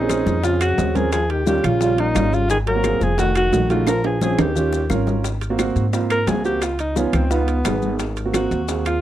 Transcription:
Already playing: A#1 A#2 D#4
0.01 C4 C#4 G#4
0.09 C4 C#4 G#4, high bongo, high conga, high timbale, low timbale, claves, maracas
0.26 F2, high conga, maracas
0.43 C#3 C4 C#4 F4 G#4, high bongo, high conga, high timbale, maracas
0.60 C#3 F#4, high bongo, high conga, high timbale, claves, maracas
0.78 D#2 C4 C#4 G#4, high bongo, low bongo, high conga, low timbale, maracas
0.95 F3 C4 C#4 G#4 A#4, high bongo, high conga, high timbale, maracas
1.12 F3 G#4, high bongo, high conga, high timbale, claves, maracas
1.29 D#3 G4, high bongo, high conga, high timbale
1.46 D#3 G3 C#4 F4 G4, high bongo, high conga, low timbale, maracas
1.63 A#1 C#3 F4, high conga, low conga, high timbale, claves, maracas
1.81 G3 C#4 F4, high bongo, maracas
1.97 A#2 D#4, high bongo, high timbale
2.15 G#1 G3 C#4 F4, high bongo, low bongo, high conga, high timbale, low timbale, claves, maracas
2.32 C#3 F4, high bongo, high conga, maracas
2.50 D#3 G#4, high bongo, high conga, maracas
2.67 F#3 A#4, high bongo, high conga, high timbale
2.75 A#3 C4 F#4
2.84 A#3 C4 G#4, high bongo, high conga, high timbale, low timbale, claves, maracas
3.01 F1 F3 G#4, high conga, maracas
3.18 D#3 A3 D#4 F#4, high bongo, high conga, high timbale, maracas
3.35 D#3 F#4, high bongo, high conga, high timbale, claves, maracas
3.52 A#1 A3 D#4 F#4, high bongo, low bongo, high conga, low timbale, maracas
3.70 C#3 A3 D#4 F4 F#4, high bongo, high conga, high timbale, maracas
3.87 F3 A#4, high bongo, high timbale, claves, maracas
4.04 F3 G#4, high bongo, high conga, high timbale
4.21 F3 C4 C#4 G#4, high conga, low timbale, maracas
4.38 D#2 D#3 G4, low bongo, high conga, low conga, high timbale, claves, maracas
4.56 C#4 F4 G4, high conga, low conga, low timbale, maracas
4.73 low bongo, maracas
4.90 G#1 C#4 F4 A#4, low bongo, high conga, claves, maracas
5.07 low bongo, high conga, low timbale, maracas
5.24 high bongo, high timbale, maracas
5.41 high bongo, high conga, high timbale, maracas
5.50 A#3 C4 F#4
5.59 A#3 C4 F#4, high bongo, high conga, high timbale, low timbale, claves, maracas
5.76 G#2, high bongo, high conga, maracas
5.93 A#3 C4 F4, high bongo, high conga, high timbale, maracas
6.10 A#4, high conga, high timbale, claves, maracas
6.27 C#2 A#3 C4 F#4 G#4, high bongo, low bongo, high conga, high timbale, low timbale, maracas
6.45 A#3 C4 F#4 G4, high bongo, maracas
6.62 F4, high bongo, high conga, high timbale, claves, maracas
6.79 D#4, high conga, high timbale, maracas
6.96 B3 C#4 D#4 F4, high bongo, high conga, low timbale, maracas
7.13 C#2 C4, high bongo, high conga, low conga, high timbale, claves, maracas
7.31 B3 D#4 F4, high bongo, high conga, maracas
7.48 high bongo, high conga, high timbale, maracas
7.65 G#1 B3 D#4 G#4, high bongo, low bongo, high conga, high timbale, low timbale, claves, maracas
7.82 high bongo, high conga, maracas
7.99 high bongo, high conga, high timbale, maracas
8.17 high bongo, high conga, high timbale, maracas
8.25 A#3 C4 F#4
8.34 A#3 C4 F#4, high bongo, high conga, high timbale, low timbale, claves, maracas
8.51 D#2, high bongo, high conga, maracas
8.68 A#3 C4 G#4, high bongo, high conga, high timbale, maracas
8.86 F4, high conga, high timbale, claves, maracas

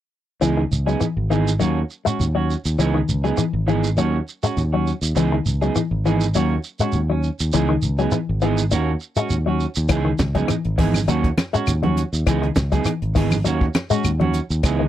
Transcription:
0.41 C#2 E3 B3 D#4 G#4, shekere
0.57 D#3
0.71 C#2, shekere
0.86 F#3 B3 D#4 G#4, shekere
1.00 E3, shekere
1.17 G#1
1.30 D#3 E3 B3 D#4 G#4, shekere
1.48 shekere
1.59 D#2 F#3 A#3 C#4 F#4, shekere
1.90 shekere
2.05 G#3 C#4 F#4, shekere
2.20 D#2, shekere
2.35 F#3 C#4 F#4
2.51 shekere
2.65 D#2, shekere
2.79 C#2 E3 B3 D#4 G#4, shekere
2.94 D#3
3.09 C#2, shekere
3.24 F#3 B3 D#4 G#4, shekere
3.38 E3, shekere
3.53 G#1
3.67 E3 B3 D#4 G#4, shekere
3.84 shekere
3.97 D#2 F#3 A#3 C#4 F#4, shekere
4.28 shekere
4.43 G#3 C#4 F#4, shekere
4.57 D#2, shekere
4.73 F#3 C#4 F#4
4.87 shekere
5.02 D#2, shekere
5.15 C#2 E3 B3 D#4 G#4, shekere
5.32 D#3
5.46 C#2, shekere
5.61 F#3 B3 D#4 G#4, shekere
5.76 E3, shekere
5.91 G#1
6.05 E3 B3 D#4 G#4, shekere
6.21 shekere
6.35 D#2 F#3 A#3 C#4 F#4, shekere
6.64 shekere
6.80 G#3 C#4 F#4, shekere
6.92 D#2, shekere
7.10 F#3 C#4, muted clean electric guitar stroke
7.23 shekere
7.40 D#2, shekere
7.53 C#2 E3 B3 D#4 G#4, shekere
7.69 D#3
7.82 C#2, shekere
7.98 F#3 B3 D#4 G#4, shekere
8.12 E3, shekere
8.29 G#1
8.41 E3 B3 D#4 G#4, shekere
8.58 shekere
8.71 D#2 A#3 C#4 F#4, muted clean electric guitar stroke, shekere
9.01 shekere
9.16 G#3 C#4 F#4, shekere
9.30 D#2, shekere
9.46 F#3 C#4 F#4
9.60 shekere
9.75 D#2, shekere
9.89 C#2 E3 B3 D#4 G#4, kick, closed hi-hat, claves, shekere
10.05 D#3
10.19 C#2, kick, snare, closed hi-hat, high conga, shekere
10.35 F#3 B3 D#4 G#4, kick, closed hi-hat, high conga, shekere
10.48 E3, closed hi-hat, claves, shekere
10.65 G#1, closed hi-hat
10.78 E3 B3 D#4 G#4, kick, open hi-hat, shekere
10.94 snare, high conga, claves, shekere
11.08 D#2 F#3 A#3 C#4 F#4, closed hi-hat, shekere
11.24 kick, closed hi-hat
11.38 snare, closed hi-hat, high conga, claves, shekere
11.53 G#3 C#4 F#4, closed hi-hat, shekere
11.67 D#2, closed hi-hat, claves, shekere
11.83 F#3 C#4 F#4, closed hi-hat, high conga
11.97 closed hi-hat, shekere
12.13 D#2, shekere
12.26 C#2 E3 B3 D#4 G#4, kick, closed hi-hat, claves, shekere
12.42 D#3, closed hi-hat
12.56 C#2, kick, snare, closed hi-hat, high conga, shekere
12.72 F#3 B3 D#4 G#4, kick, closed hi-hat, shekere
12.85 E3, closed hi-hat, claves, shekere
13.02 G#1, closed hi-hat
13.15 D#3 E3 B3 D#4 G#4, kick, open hi-hat, shekere
13.31 high conga, claves, shekere
13.44 D#2 F#3 A#3 C#4 F#4, closed hi-hat, shekere
13.61 kick
13.74 snare, closed hi-hat, high conga, claves, shekere
13.90 G#3 C#4 F#4, closed hi-hat, shekere
14.04 D#2, closed hi-hat, claves, shekere
14.20 F#3 C#4 F#4, closed hi-hat, high conga
14.34 closed hi-hat, shekere
14.50 D#2, shekere
14.63 C#2 E3 B3 D#4 G#4, muted clean electric guitar stroke, kick, closed hi-hat, claves, shekere
14.79 D#3

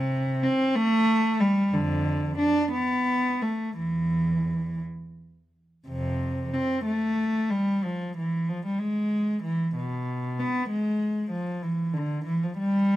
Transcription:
Already playing: C3
0.44 C4
0.75 A3
1.40 G3
1.73 F2 D3
2.39 D4
2.72 B3
3.42 A3
3.78 E2 E3
5.88 F2 C3
6.54 C4
6.85 A3
7.50 G3
7.84 F3
8.17 E3
8.49 F3
8.66 G3
8.79 G#3
9.43 E3
9.76 B2
10.40 B3
10.70 G#3
11.31 F3
11.63 E3
11.93 D3
12.25 E3
12.43 F3
12.58 G3

